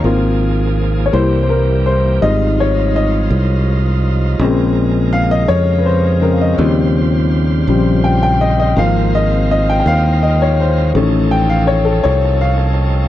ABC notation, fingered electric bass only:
X:1
M:6/8
L:1/8
Q:3/8=55
K:Ab
V:1 name="Fingered electric bass" clef=bass
A,,,3 C,,3 | A,,,3 C,,3 | B,,,3 F,,3 | E,,3 B,,,3 |
A,,,3 E,,3 | =A,,,3 C,,3 |]